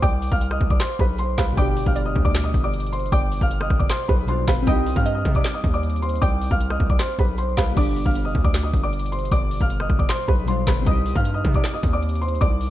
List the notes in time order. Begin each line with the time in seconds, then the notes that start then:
0.02 C2 D5 G5 D6, kick, closed hi-hat
0.22 open hi-hat
0.32 C2 F5 F6, kick
0.41 closed hi-hat
0.51 D#5 D#6, cross-stick
0.61 C2, kick
0.70 D5 D6, kick
0.80 C5 C6, snare, clap, closed hi-hat
0.99 B1 B4 B5, kick
1.18 C5 C6, closed hi-hat
1.38 C2 B4 F5 B5, kick, snare, clap, closed hi-hat
1.52 B2 G3
1.57 G1 D4 D5 G5 D6, kick, closed hi-hat
1.62 G4
1.77 open hi-hat
1.86 G1 F5 F6, kick
1.96 D5, closed hi-hat
2.05 D#5 D#6
2.15 D2, kick
2.25 D5 D6, kick
2.35 snare, clap, closed hi-hat
2.44 D#5 D#6
2.54 G1, kick, closed hi-hat
2.64 D5 D6
2.73 closed hi-hat
2.80 closed hi-hat
2.86 closed hi-hat
2.92 C5 C6, closed hi-hat
2.99 closed hi-hat
3.06 closed hi-hat
3.12 G1 D5 G5 D6, kick, closed hi-hat
3.32 open hi-hat
3.41 G1 F5 F6, kick
3.51 closed hi-hat
3.61 D#5 D#6, cross-stick
3.70 G1, kick, cross-stick
3.79 D5 D6, kick
3.90 C5 C6, snare, clap, closed hi-hat
4.08 B1 B4 B5, kick
4.26 B2 G3 D4 C5 C6, closed hi-hat
4.31 F4
4.48 G1 B4 F5 B5, kick, snare, clap, closed hi-hat
4.62 G3 C4
4.67 C2 D#4 D#5 G5 D#6, kick, closed hi-hat
4.72 G4
4.87 open hi-hat
4.96 G2 F5 F6, kick
5.06 D#5, closed hi-hat
5.15 D#5 D#6
5.25 C3, kick
5.35 D5 D6, kick
5.44 snare, clap, closed hi-hat
5.54 D#5 D#6
5.64 D#2, kick, closed hi-hat
5.74 D5 D6
5.83 closed hi-hat
5.90 closed hi-hat
5.96 closed hi-hat
6.02 C5 C6, closed hi-hat
6.09 closed hi-hat
6.16 closed hi-hat
6.22 C2 D5 G5 D6, kick, closed hi-hat
6.41 open hi-hat
6.51 C2 F5 F6, kick
6.61 closed hi-hat
6.70 D#5 D#6, cross-stick
6.80 C2, kick
6.90 D5 D6, kick
6.99 C5 C6, snare, clap, closed hi-hat
7.19 B1 B4 B5, kick
7.38 C5 C6, closed hi-hat
7.57 C2 B4 F5 B5, kick, snare, clap, closed hi-hat
7.72 B2 G3
7.77 G1 D4 D5 D6, kick, closed hi-hat, crash
7.81 G4
7.96 open hi-hat
8.06 G1 F5 F6, kick
8.15 closed hi-hat
8.25 D#5 D#6
8.35 D2, kick
8.44 D5 D6, kick
8.54 snare, clap, closed hi-hat
8.63 D#5 D#6
8.73 G1, kick, closed hi-hat
8.83 D5 D6
8.93 closed hi-hat
8.99 closed hi-hat
9.06 closed hi-hat
9.12 C5 C6, closed hi-hat
9.19 closed hi-hat
9.25 closed hi-hat
9.32 G1 D5 D6, kick, closed hi-hat
9.51 open hi-hat
9.61 G1 F5 F6, kick
9.70 closed hi-hat
9.80 D#5 D#6, cross-stick
9.90 G1, kick, cross-stick
9.99 D5 D6, kick
10.09 C5 C6, snare, clap, closed hi-hat
10.28 B1 B4 B5, kick
10.46 B2 G3 D4 C5 C6, closed hi-hat
10.50 F4
10.67 G1 B4 B5, kick, snare, clap, closed hi-hat
10.82 G3 C4
10.86 C2 D#4 D#5 D#6, kick, closed hi-hat
10.91 G4
11.06 open hi-hat
11.15 G2 F5 F6, kick
11.25 closed hi-hat
11.34 D#5 D#6
11.45 C3, kick
11.54 D5 D6, kick
11.64 snare, clap, closed hi-hat
11.74 D#5 D#6
11.83 D#2, kick, closed hi-hat
11.93 D5 D6
12.03 closed hi-hat
12.09 closed hi-hat
12.15 closed hi-hat
12.22 C5 C6, closed hi-hat
12.28 closed hi-hat
12.35 closed hi-hat
12.41 C2 D5 D6, kick, closed hi-hat
12.61 open hi-hat